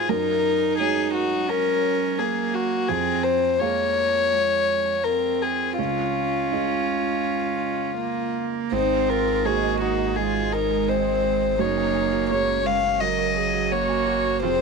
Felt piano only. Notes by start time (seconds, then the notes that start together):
0.09 F#2
0.79 G#3 F#4 C#5
2.89 F2
3.61 G#3 G#4 F5
5.78 C#2
6.52 G#3 F4 D#5
8.72 G#2
9.45 G#3 F#4 C5
11.59 F#2
12.30 G#3 F#4 C#5
14.43 F2